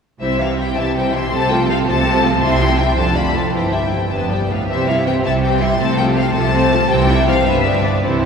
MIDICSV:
0, 0, Header, 1, 6, 480
1, 0, Start_track
1, 0, Key_signature, 0, "major"
1, 0, Tempo, 369231
1, 274, Time_signature, 6, 3, 24, 8
1, 4107, Tempo, 380469
1, 6507, Tempo, 368324
1, 9387, Tempo, 387347
1, 10606, End_track
2, 0, Start_track
2, 0, Title_t, "Violin section"
2, 0, Program_c, 0, 48
2, 259, Note_on_c, 0, 76, 76
2, 493, Note_off_c, 0, 76, 0
2, 513, Note_on_c, 0, 77, 74
2, 747, Note_on_c, 0, 79, 80
2, 756, Note_off_c, 0, 77, 0
2, 978, Note_on_c, 0, 81, 88
2, 991, Note_off_c, 0, 79, 0
2, 1235, Note_off_c, 0, 81, 0
2, 1246, Note_on_c, 0, 79, 75
2, 1483, Note_on_c, 0, 84, 90
2, 1486, Note_off_c, 0, 79, 0
2, 1726, Note_off_c, 0, 84, 0
2, 1726, Note_on_c, 0, 81, 110
2, 1965, Note_off_c, 0, 81, 0
2, 1965, Note_on_c, 0, 79, 98
2, 2203, Note_off_c, 0, 79, 0
2, 2205, Note_on_c, 0, 77, 104
2, 2300, Note_off_c, 0, 77, 0
2, 2446, Note_on_c, 0, 81, 105
2, 3138, Note_off_c, 0, 81, 0
2, 3138, Note_on_c, 0, 84, 107
2, 3611, Note_off_c, 0, 84, 0
2, 3612, Note_on_c, 0, 79, 92
2, 3860, Note_off_c, 0, 79, 0
2, 3862, Note_on_c, 0, 81, 95
2, 4100, Note_on_c, 0, 83, 83
2, 4105, Note_off_c, 0, 81, 0
2, 4337, Note_on_c, 0, 81, 71
2, 4338, Note_off_c, 0, 83, 0
2, 4579, Note_off_c, 0, 81, 0
2, 4583, Note_on_c, 0, 79, 69
2, 5290, Note_off_c, 0, 79, 0
2, 5297, Note_on_c, 0, 81, 68
2, 5543, Note_off_c, 0, 81, 0
2, 5543, Note_on_c, 0, 79, 61
2, 5788, Note_off_c, 0, 79, 0
2, 5791, Note_on_c, 0, 77, 63
2, 6021, Note_on_c, 0, 76, 86
2, 6033, Note_off_c, 0, 77, 0
2, 6261, Note_off_c, 0, 76, 0
2, 6280, Note_on_c, 0, 77, 85
2, 6373, Note_off_c, 0, 77, 0
2, 6511, Note_on_c, 0, 79, 88
2, 6606, Note_off_c, 0, 79, 0
2, 6753, Note_on_c, 0, 81, 99
2, 6847, Note_off_c, 0, 81, 0
2, 6988, Note_on_c, 0, 79, 85
2, 7216, Note_on_c, 0, 84, 90
2, 7222, Note_off_c, 0, 79, 0
2, 7446, Note_on_c, 0, 81, 104
2, 7461, Note_off_c, 0, 84, 0
2, 7686, Note_on_c, 0, 79, 96
2, 7696, Note_off_c, 0, 81, 0
2, 7785, Note_off_c, 0, 79, 0
2, 7928, Note_on_c, 0, 77, 96
2, 8167, Note_off_c, 0, 77, 0
2, 8170, Note_on_c, 0, 81, 109
2, 8881, Note_off_c, 0, 81, 0
2, 8899, Note_on_c, 0, 79, 106
2, 9386, Note_on_c, 0, 77, 108
2, 9387, Note_off_c, 0, 79, 0
2, 9616, Note_off_c, 0, 77, 0
2, 9625, Note_on_c, 0, 76, 97
2, 10095, Note_on_c, 0, 74, 82
2, 10099, Note_off_c, 0, 76, 0
2, 10340, Note_off_c, 0, 74, 0
2, 10346, Note_on_c, 0, 72, 71
2, 10606, Note_off_c, 0, 72, 0
2, 10606, End_track
3, 0, Start_track
3, 0, Title_t, "Violin section"
3, 0, Program_c, 1, 48
3, 273, Note_on_c, 1, 64, 49
3, 278, Note_on_c, 1, 72, 51
3, 500, Note_off_c, 1, 64, 0
3, 503, Note_off_c, 1, 72, 0
3, 509, Note_on_c, 1, 76, 47
3, 510, Note_on_c, 1, 67, 44
3, 749, Note_on_c, 1, 64, 48
3, 754, Note_off_c, 1, 76, 0
3, 755, Note_off_c, 1, 67, 0
3, 755, Note_on_c, 1, 72, 48
3, 993, Note_on_c, 1, 67, 48
3, 996, Note_off_c, 1, 64, 0
3, 996, Note_on_c, 1, 76, 49
3, 999, Note_off_c, 1, 72, 0
3, 1233, Note_on_c, 1, 64, 49
3, 1233, Note_on_c, 1, 72, 48
3, 1243, Note_off_c, 1, 67, 0
3, 1244, Note_off_c, 1, 76, 0
3, 1466, Note_off_c, 1, 64, 0
3, 1466, Note_off_c, 1, 72, 0
3, 1476, Note_on_c, 1, 76, 52
3, 1481, Note_on_c, 1, 67, 53
3, 1715, Note_on_c, 1, 69, 64
3, 1718, Note_on_c, 1, 72, 64
3, 1723, Note_off_c, 1, 76, 0
3, 1725, Note_off_c, 1, 67, 0
3, 1943, Note_off_c, 1, 69, 0
3, 1944, Note_off_c, 1, 72, 0
3, 1955, Note_on_c, 1, 65, 57
3, 1956, Note_on_c, 1, 69, 59
3, 2184, Note_off_c, 1, 69, 0
3, 2198, Note_off_c, 1, 65, 0
3, 2199, Note_on_c, 1, 69, 64
3, 2199, Note_on_c, 1, 72, 62
3, 2420, Note_off_c, 1, 69, 0
3, 2433, Note_on_c, 1, 65, 65
3, 2436, Note_on_c, 1, 69, 66
3, 2439, Note_off_c, 1, 72, 0
3, 2656, Note_off_c, 1, 69, 0
3, 2671, Note_on_c, 1, 69, 58
3, 2673, Note_off_c, 1, 65, 0
3, 2676, Note_on_c, 1, 72, 57
3, 2884, Note_off_c, 1, 69, 0
3, 2896, Note_off_c, 1, 72, 0
3, 2899, Note_on_c, 1, 69, 63
3, 2905, Note_on_c, 1, 65, 61
3, 3143, Note_off_c, 1, 69, 0
3, 3145, Note_off_c, 1, 65, 0
3, 3149, Note_on_c, 1, 64, 67
3, 3151, Note_on_c, 1, 76, 67
3, 3371, Note_off_c, 1, 64, 0
3, 3372, Note_off_c, 1, 76, 0
3, 3381, Note_on_c, 1, 67, 59
3, 3386, Note_on_c, 1, 79, 62
3, 3614, Note_on_c, 1, 64, 59
3, 3617, Note_on_c, 1, 76, 55
3, 3624, Note_off_c, 1, 67, 0
3, 3626, Note_off_c, 1, 79, 0
3, 3857, Note_on_c, 1, 77, 54
3, 3861, Note_off_c, 1, 64, 0
3, 3862, Note_off_c, 1, 76, 0
3, 3862, Note_on_c, 1, 69, 57
3, 4085, Note_off_c, 1, 77, 0
3, 4088, Note_off_c, 1, 69, 0
3, 4101, Note_on_c, 1, 65, 50
3, 4104, Note_on_c, 1, 74, 47
3, 4331, Note_on_c, 1, 77, 44
3, 4337, Note_on_c, 1, 69, 48
3, 4339, Note_off_c, 1, 65, 0
3, 4340, Note_off_c, 1, 74, 0
3, 4571, Note_on_c, 1, 67, 50
3, 4574, Note_on_c, 1, 72, 47
3, 4576, Note_off_c, 1, 77, 0
3, 4579, Note_off_c, 1, 69, 0
3, 4800, Note_off_c, 1, 67, 0
3, 4801, Note_off_c, 1, 72, 0
3, 4816, Note_on_c, 1, 64, 43
3, 4817, Note_on_c, 1, 76, 42
3, 5055, Note_on_c, 1, 67, 42
3, 5058, Note_on_c, 1, 72, 39
3, 5059, Note_off_c, 1, 64, 0
3, 5059, Note_off_c, 1, 76, 0
3, 5300, Note_off_c, 1, 67, 0
3, 5301, Note_off_c, 1, 72, 0
3, 5305, Note_on_c, 1, 71, 40
3, 5306, Note_off_c, 1, 71, 0
3, 5306, Note_on_c, 1, 71, 44
3, 5531, Note_off_c, 1, 71, 0
3, 5544, Note_on_c, 1, 74, 39
3, 5547, Note_on_c, 1, 67, 40
3, 5789, Note_off_c, 1, 74, 0
3, 5790, Note_off_c, 1, 67, 0
3, 5790, Note_on_c, 1, 71, 43
3, 5792, Note_off_c, 1, 71, 0
3, 5792, Note_on_c, 1, 71, 40
3, 6033, Note_off_c, 1, 71, 0
3, 6035, Note_on_c, 1, 72, 54
3, 6037, Note_on_c, 1, 67, 58
3, 6256, Note_off_c, 1, 72, 0
3, 6258, Note_off_c, 1, 67, 0
3, 6266, Note_on_c, 1, 64, 52
3, 6266, Note_on_c, 1, 76, 50
3, 6505, Note_off_c, 1, 64, 0
3, 6505, Note_off_c, 1, 76, 0
3, 6509, Note_on_c, 1, 67, 52
3, 6513, Note_on_c, 1, 72, 55
3, 6748, Note_off_c, 1, 67, 0
3, 6750, Note_off_c, 1, 72, 0
3, 6750, Note_on_c, 1, 64, 56
3, 6750, Note_on_c, 1, 76, 55
3, 6981, Note_on_c, 1, 72, 50
3, 6986, Note_on_c, 1, 67, 55
3, 6987, Note_off_c, 1, 76, 0
3, 6988, Note_off_c, 1, 64, 0
3, 7206, Note_off_c, 1, 72, 0
3, 7208, Note_off_c, 1, 67, 0
3, 7225, Note_on_c, 1, 76, 55
3, 7231, Note_on_c, 1, 64, 54
3, 7463, Note_on_c, 1, 69, 64
3, 7465, Note_on_c, 1, 72, 66
3, 7466, Note_off_c, 1, 76, 0
3, 7469, Note_off_c, 1, 64, 0
3, 7687, Note_off_c, 1, 69, 0
3, 7689, Note_off_c, 1, 72, 0
3, 7701, Note_on_c, 1, 65, 58
3, 7703, Note_on_c, 1, 69, 64
3, 7937, Note_off_c, 1, 69, 0
3, 7941, Note_off_c, 1, 65, 0
3, 7945, Note_on_c, 1, 72, 64
3, 7953, Note_on_c, 1, 69, 62
3, 8180, Note_off_c, 1, 72, 0
3, 8185, Note_off_c, 1, 69, 0
3, 8198, Note_on_c, 1, 65, 70
3, 8199, Note_on_c, 1, 69, 70
3, 8402, Note_off_c, 1, 69, 0
3, 8417, Note_on_c, 1, 69, 55
3, 8425, Note_on_c, 1, 72, 56
3, 8427, Note_off_c, 1, 65, 0
3, 8641, Note_off_c, 1, 69, 0
3, 8645, Note_off_c, 1, 72, 0
3, 8659, Note_on_c, 1, 69, 58
3, 8662, Note_on_c, 1, 65, 60
3, 8901, Note_off_c, 1, 69, 0
3, 8903, Note_off_c, 1, 65, 0
3, 8906, Note_on_c, 1, 67, 72
3, 8906, Note_on_c, 1, 72, 74
3, 9129, Note_off_c, 1, 72, 0
3, 9130, Note_off_c, 1, 67, 0
3, 9144, Note_on_c, 1, 76, 64
3, 9146, Note_on_c, 1, 64, 66
3, 9388, Note_off_c, 1, 76, 0
3, 9389, Note_off_c, 1, 64, 0
3, 9392, Note_on_c, 1, 67, 63
3, 9395, Note_on_c, 1, 72, 65
3, 9610, Note_on_c, 1, 71, 65
3, 9613, Note_off_c, 1, 71, 0
3, 9613, Note_on_c, 1, 71, 66
3, 9624, Note_off_c, 1, 67, 0
3, 9625, Note_off_c, 1, 72, 0
3, 9836, Note_off_c, 1, 71, 0
3, 9855, Note_on_c, 1, 74, 54
3, 9859, Note_on_c, 1, 67, 57
3, 10096, Note_off_c, 1, 74, 0
3, 10098, Note_off_c, 1, 67, 0
3, 10098, Note_on_c, 1, 71, 51
3, 10100, Note_off_c, 1, 71, 0
3, 10100, Note_on_c, 1, 71, 53
3, 10329, Note_on_c, 1, 64, 55
3, 10335, Note_on_c, 1, 72, 51
3, 10342, Note_off_c, 1, 71, 0
3, 10564, Note_off_c, 1, 64, 0
3, 10567, Note_off_c, 1, 72, 0
3, 10606, End_track
4, 0, Start_track
4, 0, Title_t, "Viola section"
4, 0, Program_c, 2, 48
4, 275, Note_on_c, 2, 55, 55
4, 275, Note_on_c, 2, 60, 53
4, 501, Note_off_c, 2, 55, 0
4, 501, Note_off_c, 2, 60, 0
4, 504, Note_on_c, 2, 64, 47
4, 506, Note_on_c, 2, 52, 48
4, 752, Note_off_c, 2, 64, 0
4, 753, Note_off_c, 2, 52, 0
4, 755, Note_on_c, 2, 55, 45
4, 756, Note_on_c, 2, 60, 47
4, 1000, Note_off_c, 2, 55, 0
4, 1000, Note_off_c, 2, 60, 0
4, 1001, Note_on_c, 2, 52, 52
4, 1003, Note_on_c, 2, 64, 51
4, 1244, Note_on_c, 2, 60, 52
4, 1246, Note_off_c, 2, 52, 0
4, 1246, Note_on_c, 2, 55, 50
4, 1248, Note_off_c, 2, 64, 0
4, 1472, Note_off_c, 2, 60, 0
4, 1473, Note_off_c, 2, 55, 0
4, 1491, Note_on_c, 2, 64, 51
4, 1493, Note_on_c, 2, 52, 54
4, 1730, Note_off_c, 2, 64, 0
4, 1731, Note_off_c, 2, 52, 0
4, 1732, Note_on_c, 2, 60, 65
4, 1733, Note_on_c, 2, 57, 66
4, 1952, Note_off_c, 2, 57, 0
4, 1952, Note_off_c, 2, 60, 0
4, 1972, Note_on_c, 2, 57, 58
4, 1975, Note_on_c, 2, 53, 56
4, 2192, Note_off_c, 2, 57, 0
4, 2206, Note_on_c, 2, 60, 57
4, 2207, Note_on_c, 2, 57, 58
4, 2208, Note_off_c, 2, 53, 0
4, 2427, Note_off_c, 2, 57, 0
4, 2442, Note_off_c, 2, 60, 0
4, 2443, Note_on_c, 2, 57, 65
4, 2444, Note_on_c, 2, 53, 69
4, 2665, Note_off_c, 2, 57, 0
4, 2678, Note_off_c, 2, 53, 0
4, 2680, Note_on_c, 2, 57, 61
4, 2682, Note_on_c, 2, 60, 65
4, 2894, Note_off_c, 2, 57, 0
4, 2899, Note_off_c, 2, 60, 0
4, 2909, Note_on_c, 2, 53, 57
4, 2909, Note_on_c, 2, 57, 57
4, 3148, Note_off_c, 2, 53, 0
4, 3148, Note_off_c, 2, 57, 0
4, 3150, Note_on_c, 2, 55, 72
4, 3151, Note_on_c, 2, 60, 74
4, 3371, Note_off_c, 2, 55, 0
4, 3372, Note_off_c, 2, 60, 0
4, 3387, Note_on_c, 2, 52, 59
4, 3387, Note_on_c, 2, 64, 58
4, 3625, Note_on_c, 2, 55, 50
4, 3626, Note_off_c, 2, 52, 0
4, 3626, Note_on_c, 2, 60, 52
4, 3627, Note_off_c, 2, 64, 0
4, 3862, Note_on_c, 2, 62, 55
4, 3863, Note_on_c, 2, 53, 60
4, 3866, Note_off_c, 2, 55, 0
4, 3867, Note_off_c, 2, 60, 0
4, 4088, Note_off_c, 2, 53, 0
4, 4088, Note_off_c, 2, 62, 0
4, 4107, Note_on_c, 2, 57, 50
4, 4108, Note_on_c, 2, 50, 52
4, 4341, Note_on_c, 2, 53, 44
4, 4342, Note_off_c, 2, 50, 0
4, 4342, Note_off_c, 2, 57, 0
4, 4342, Note_on_c, 2, 62, 43
4, 4581, Note_off_c, 2, 53, 0
4, 4581, Note_off_c, 2, 62, 0
4, 4583, Note_on_c, 2, 52, 49
4, 4587, Note_on_c, 2, 64, 52
4, 4807, Note_off_c, 2, 52, 0
4, 4808, Note_off_c, 2, 64, 0
4, 4825, Note_on_c, 2, 67, 42
4, 4827, Note_on_c, 2, 55, 42
4, 5064, Note_off_c, 2, 67, 0
4, 5065, Note_off_c, 2, 55, 0
4, 5070, Note_on_c, 2, 64, 37
4, 5071, Note_on_c, 2, 52, 39
4, 5306, Note_on_c, 2, 59, 46
4, 5306, Note_on_c, 2, 62, 41
4, 5307, Note_off_c, 2, 52, 0
4, 5307, Note_off_c, 2, 64, 0
4, 5530, Note_off_c, 2, 59, 0
4, 5531, Note_off_c, 2, 62, 0
4, 5546, Note_on_c, 2, 59, 45
4, 5549, Note_on_c, 2, 55, 44
4, 5774, Note_off_c, 2, 59, 0
4, 5789, Note_on_c, 2, 59, 42
4, 5791, Note_off_c, 2, 55, 0
4, 5793, Note_on_c, 2, 62, 40
4, 6031, Note_off_c, 2, 59, 0
4, 6033, Note_off_c, 2, 62, 0
4, 6034, Note_on_c, 2, 60, 54
4, 6036, Note_on_c, 2, 52, 54
4, 6256, Note_off_c, 2, 60, 0
4, 6257, Note_off_c, 2, 52, 0
4, 6269, Note_on_c, 2, 55, 51
4, 6270, Note_on_c, 2, 64, 49
4, 6507, Note_off_c, 2, 55, 0
4, 6507, Note_off_c, 2, 64, 0
4, 6513, Note_on_c, 2, 52, 49
4, 6517, Note_on_c, 2, 60, 53
4, 6750, Note_off_c, 2, 52, 0
4, 6752, Note_on_c, 2, 55, 52
4, 6752, Note_on_c, 2, 64, 55
4, 6753, Note_off_c, 2, 60, 0
4, 6988, Note_off_c, 2, 55, 0
4, 6988, Note_on_c, 2, 52, 53
4, 6988, Note_on_c, 2, 60, 55
4, 6989, Note_off_c, 2, 64, 0
4, 7210, Note_off_c, 2, 52, 0
4, 7210, Note_off_c, 2, 60, 0
4, 7217, Note_on_c, 2, 64, 56
4, 7221, Note_on_c, 2, 55, 52
4, 7456, Note_on_c, 2, 57, 63
4, 7460, Note_on_c, 2, 60, 71
4, 7462, Note_off_c, 2, 64, 0
4, 7463, Note_off_c, 2, 55, 0
4, 7684, Note_off_c, 2, 57, 0
4, 7686, Note_off_c, 2, 60, 0
4, 7700, Note_on_c, 2, 57, 56
4, 7703, Note_on_c, 2, 53, 54
4, 7922, Note_off_c, 2, 57, 0
4, 7938, Note_on_c, 2, 57, 59
4, 7938, Note_on_c, 2, 60, 59
4, 7942, Note_off_c, 2, 53, 0
4, 8162, Note_off_c, 2, 57, 0
4, 8177, Note_off_c, 2, 60, 0
4, 8177, Note_on_c, 2, 53, 61
4, 8178, Note_on_c, 2, 57, 70
4, 8396, Note_off_c, 2, 57, 0
4, 8411, Note_on_c, 2, 57, 67
4, 8411, Note_on_c, 2, 60, 64
4, 8416, Note_off_c, 2, 53, 0
4, 8638, Note_off_c, 2, 57, 0
4, 8638, Note_off_c, 2, 60, 0
4, 8656, Note_on_c, 2, 57, 62
4, 8659, Note_on_c, 2, 53, 59
4, 8899, Note_off_c, 2, 57, 0
4, 8901, Note_off_c, 2, 53, 0
4, 8901, Note_on_c, 2, 60, 73
4, 8905, Note_on_c, 2, 52, 69
4, 9127, Note_off_c, 2, 60, 0
4, 9129, Note_off_c, 2, 52, 0
4, 9143, Note_on_c, 2, 55, 60
4, 9144, Note_on_c, 2, 64, 61
4, 9386, Note_on_c, 2, 52, 55
4, 9387, Note_off_c, 2, 55, 0
4, 9387, Note_off_c, 2, 64, 0
4, 9387, Note_on_c, 2, 60, 53
4, 9617, Note_on_c, 2, 62, 65
4, 9619, Note_on_c, 2, 59, 64
4, 9621, Note_off_c, 2, 52, 0
4, 9621, Note_off_c, 2, 60, 0
4, 9839, Note_off_c, 2, 62, 0
4, 9840, Note_off_c, 2, 59, 0
4, 9857, Note_on_c, 2, 55, 58
4, 9859, Note_on_c, 2, 59, 57
4, 10079, Note_off_c, 2, 59, 0
4, 10094, Note_on_c, 2, 59, 47
4, 10095, Note_on_c, 2, 62, 49
4, 10097, Note_off_c, 2, 55, 0
4, 10335, Note_on_c, 2, 64, 57
4, 10338, Note_on_c, 2, 52, 55
4, 10339, Note_off_c, 2, 59, 0
4, 10340, Note_off_c, 2, 62, 0
4, 10566, Note_off_c, 2, 64, 0
4, 10568, Note_off_c, 2, 52, 0
4, 10606, End_track
5, 0, Start_track
5, 0, Title_t, "Cello section"
5, 0, Program_c, 3, 48
5, 275, Note_on_c, 3, 48, 65
5, 916, Note_off_c, 3, 48, 0
5, 1006, Note_on_c, 3, 48, 62
5, 1648, Note_off_c, 3, 48, 0
5, 1737, Note_on_c, 3, 48, 73
5, 2361, Note_off_c, 3, 48, 0
5, 2443, Note_on_c, 3, 48, 88
5, 3066, Note_off_c, 3, 48, 0
5, 3152, Note_on_c, 3, 48, 87
5, 3783, Note_off_c, 3, 48, 0
5, 3873, Note_on_c, 3, 41, 64
5, 4499, Note_off_c, 3, 41, 0
5, 4591, Note_on_c, 3, 43, 57
5, 5223, Note_off_c, 3, 43, 0
5, 5310, Note_on_c, 3, 41, 64
5, 5533, Note_off_c, 3, 41, 0
5, 5551, Note_on_c, 3, 43, 51
5, 5792, Note_off_c, 3, 43, 0
5, 5796, Note_on_c, 3, 45, 57
5, 6030, Note_off_c, 3, 45, 0
5, 6039, Note_on_c, 3, 48, 69
5, 6667, Note_off_c, 3, 48, 0
5, 6751, Note_on_c, 3, 48, 74
5, 7382, Note_off_c, 3, 48, 0
5, 7469, Note_on_c, 3, 48, 79
5, 8098, Note_off_c, 3, 48, 0
5, 8182, Note_on_c, 3, 48, 85
5, 8816, Note_off_c, 3, 48, 0
5, 8899, Note_on_c, 3, 48, 82
5, 9538, Note_off_c, 3, 48, 0
5, 9620, Note_on_c, 3, 43, 82
5, 10253, Note_off_c, 3, 43, 0
5, 10341, Note_on_c, 3, 48, 67
5, 10606, Note_off_c, 3, 48, 0
5, 10606, End_track
6, 0, Start_track
6, 0, Title_t, "Double bass section"
6, 0, Program_c, 4, 48
6, 274, Note_on_c, 4, 36, 63
6, 915, Note_off_c, 4, 36, 0
6, 999, Note_on_c, 4, 36, 64
6, 1644, Note_off_c, 4, 36, 0
6, 1728, Note_on_c, 4, 36, 79
6, 2357, Note_off_c, 4, 36, 0
6, 2442, Note_on_c, 4, 36, 76
6, 3066, Note_off_c, 4, 36, 0
6, 3147, Note_on_c, 4, 36, 87
6, 3781, Note_off_c, 4, 36, 0
6, 3870, Note_on_c, 4, 29, 74
6, 4498, Note_off_c, 4, 29, 0
6, 4585, Note_on_c, 4, 31, 62
6, 5220, Note_off_c, 4, 31, 0
6, 5299, Note_on_c, 4, 31, 54
6, 5944, Note_off_c, 4, 31, 0
6, 6028, Note_on_c, 4, 36, 68
6, 6661, Note_off_c, 4, 36, 0
6, 6749, Note_on_c, 4, 36, 69
6, 7381, Note_off_c, 4, 36, 0
6, 7460, Note_on_c, 4, 36, 75
6, 8093, Note_off_c, 4, 36, 0
6, 8175, Note_on_c, 4, 36, 75
6, 8812, Note_off_c, 4, 36, 0
6, 8897, Note_on_c, 4, 36, 90
6, 9536, Note_off_c, 4, 36, 0
6, 9616, Note_on_c, 4, 31, 81
6, 10251, Note_off_c, 4, 31, 0
6, 10337, Note_on_c, 4, 36, 68
6, 10606, Note_off_c, 4, 36, 0
6, 10606, End_track
0, 0, End_of_file